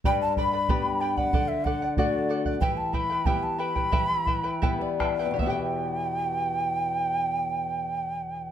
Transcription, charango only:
X:1
M:2/4
L:1/16
Q:1/4=88
K:Em
V:1 name="Charango"
[GBdgb]2 [Bdgb] [Bdb] [GBdgb]2 [Bdgb] [Bdb] | [Adf]2 [Adf] [df] [Adf]2 [Adf] [df] | [EGBeg]2 [EBeg] [EBg] [EGBeg]2 [EBeg] [EBg] | [EGBeg]2 [EBeg] [EBg] [EGBeg]2 [EBeg] [EBg] |
[EGBeg]8- | [EGBeg]8 |]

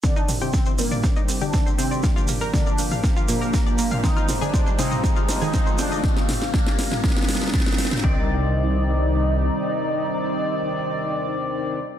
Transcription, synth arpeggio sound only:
X:1
M:4/4
L:1/16
Q:1/4=120
K:Cm
V:1 name="Synth arpeggio sound"
C E C G C c C d C E C G C c C d | B, F B, B B, d B, f B, F B, B B, d B, f | C F C A C c C e C F C A C c C e | z16 |
C2 z12 z2 | z16 |]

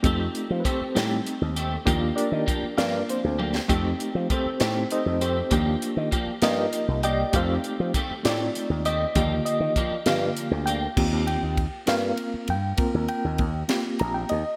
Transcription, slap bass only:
X:1
M:6/8
L:1/16
Q:3/8=66
K:Eblyd
V:1 name="Slap bass" clef=bass
F,,2 z F, z2 A,,2 z E,,3 | E,,2 z E, z2 G,,2 z D,,3 | F,,2 z F, z2 A,,2 z F,,3 | E,,2 z E, z2 G,,2 z C,,3 |
F,,2 z F, z2 A,,2 z E,,3 | E,,2 z E, z2 G,,2 z D,,3 | [K:Eb] E,, E,,2 E,,2 z G,,2 z2 G,,2 | z E,, z E,, E,,2 z2 B,,,2 E,, z |]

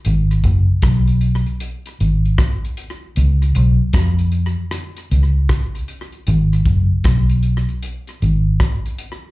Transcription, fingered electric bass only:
X:1
M:4/4
L:1/16
Q:"Swing 16ths" 1/4=77
K:G#dor
V:1 name="Fingered electric bass" clef=bass
G,,,2 F,,, z B,,,3 z3 G,,,2 z4 | C,,2 B,,, z E,,3 z3 C,,2 z4 | G,,,2 F,,, z B,,,3 z3 G,,,2 z4 |]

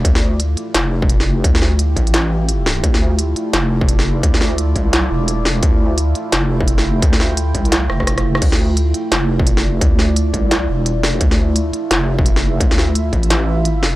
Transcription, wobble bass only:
X:1
M:4/4
L:1/8
Q:"Swing 16ths" 1/4=172
K:Dm
V:1 name="Wobble bass" clef=bass
D,,3 z F,,,4 | D,,3 A,,,4- A,,, | D,,3 z F,,,4 | D,,3 C,,2 E,,,3 |
D,,3 z F,,,4 | D,,3 C,,2 F,,,3 | D,,3 z F,,,4 | D,,3 C,,2 E,,,3 |
D,,3 z F,,,4 | D,,3 A,,,4- A,,, |]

